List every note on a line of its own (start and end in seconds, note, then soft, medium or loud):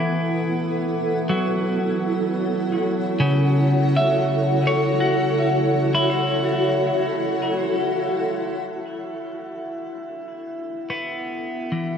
0.00 1.50 E3 medium
0.00 0.20 B3 medium
0.00 2.41 B3 medium
0.00 11.98 E4 medium
0.00 11.98 A4 medium
0.00 1.06 B4 medium
0.00 11.98 F#5 medium
1.30 3.39 F#3 medium
1.65 11.74 F#4 medium
1.75 8.69 C#5 medium
3.20 6.90 C#3 medium
3.97 4.87 E5 medium
4.67 8.42 C#5 medium
5.00 6.15 F#4 medium
5.95 9.71 E4 medium
8.68 11.98 B3 medium
8.68 11.98 E4 medium
8.68 11.98 E5 soft
8.95 11.98 D4 medium
10.90 11.98 B3 medium
11.72 11.98 E3 soft